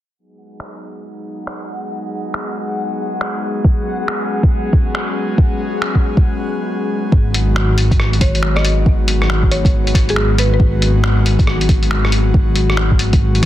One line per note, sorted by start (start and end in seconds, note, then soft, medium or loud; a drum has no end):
0.16 7.10 F#3 medium
0.16 7.10 G#3 medium
0.16 7.09 B3 medium
0.16 3.63 D#4 medium
0.16 7.10 G#4 medium
0.16 6.25 F#5 medium
0.60 finger snap medium
1.47 finger snap medium
2.34 finger snap medium
3.21 finger snap medium
3.64 7.09 C#4 medium
3.64 kick loud
4.08 finger snap loud
4.43 kick loud
4.73 kick loud
4.95 finger snap loud
5.38 kick loud
5.82 finger snap loud
5.95 kick medium
6.17 kick loud
7.12 13.46 G#1 medium
7.12 13.46 D#3 medium
7.12 13.46 F#3 medium
7.12 13.46 G#3 medium
7.12 13.46 B3 medium
7.12 13.46 F#4 medium
7.12 kick loud
7.34 closed hi-hat medium
7.56 finger snap medium
7.78 closed hi-hat medium
7.91 kick loud
7.91 closed hi-hat soft
8.00 cross-stick medium
8.13 closed hi-hat soft
8.21 8.44 C#5 medium
8.21 kick loud
8.21 closed hi-hat medium
8.35 closed hi-hat soft
8.43 finger snap loud
8.56 8.79 D#5 medium
8.56 cross-stick medium
8.65 closed hi-hat medium
8.86 kick loud
9.08 closed hi-hat medium
9.22 cross-stick soft
9.30 finger snap loud
9.43 kick medium
9.51 9.75 C#5 medium
9.51 closed hi-hat medium
9.65 kick loud
9.65 closed hi-hat soft
9.87 closed hi-hat soft
9.95 kick loud
9.95 cross-stick soft
9.95 closed hi-hat medium
10.09 10.32 G#4 medium
10.09 closed hi-hat soft
10.16 finger snap loud
10.38 10.48 B4 medium
10.38 closed hi-hat medium
10.54 10.58 B4 medium
10.60 kick loud
10.82 closed hi-hat medium
11.04 finger snap loud
11.26 closed hi-hat medium
11.39 kick loud
11.39 closed hi-hat soft
11.47 cross-stick soft
11.61 closed hi-hat soft
11.69 kick loud
11.69 closed hi-hat medium
11.83 closed hi-hat soft
11.91 finger snap loud
12.05 cross-stick soft
12.12 closed hi-hat medium
12.34 kick loud
12.56 closed hi-hat medium
12.70 cross-stick soft
12.77 finger snap loud
12.91 kick medium
12.99 closed hi-hat soft
13.13 kick loud
13.13 closed hi-hat soft
13.35 closed hi-hat soft